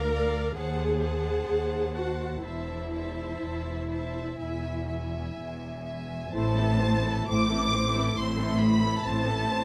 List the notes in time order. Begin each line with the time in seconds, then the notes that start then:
Already playing: D2 A#4 D5 F5 A#5
0.12 D5 F5 A#5
0.55 D#2 G#4 C5 F#5 A5
1.00 C5 F#5 A5
1.47 D#2
1.94 F#4 C5 F#5 A5
2.43 E1 E2 E4 C5 E5 A5
2.91 C5 E5 A5
3.41 E1 E2
3.89 C5 E5 A5
4.39 E1 E2 E5 G#5
4.88 E5 G#5
5.36 E1 E2
5.85 E5 G#5
6.33 A1 A2 A3 C4 E4 C5 A5
6.55 E3 C4 E4 A4
6.79 A3 C4 E4 C5
7.04 E3 C4 E4 A4
7.28 A1 A2 A3 C4 E4 C5 D6
7.50 E3 C4 E4 A4
7.73 A3 C4 E4 C5
7.95 E3 C4 E4 A4
8.16 A1 A2 A3 C4 E4 C5 C6
8.38 E3 C4 E4 A4
8.60 A3 C4 E4 C5 B5
8.81 E3 C4 E4 A4
9.03 A1 A2 A3 C4 E4 C5 A5
9.25 E3 C4 E4 A4
9.47 A3 C4 E4 C5